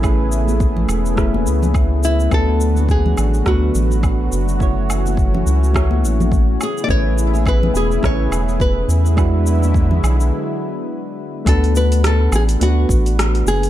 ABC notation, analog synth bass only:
X:1
M:4/4
L:1/8
Q:"Swing 16ths" 1/4=105
K:A
V:1 name="Analog synth bass" clef=bass
A,,,3 E,,,2 C,,3 | D,,3 A,,, D,, A,,,2 F,,,- | F,,,3 C,,2 A,,,2 z | A,,,3 E,,, A,,, E,,,2 E,,- |
E,,3 B,,, z4 | D,,3 A,,, D,, A,,,2 F,,, |]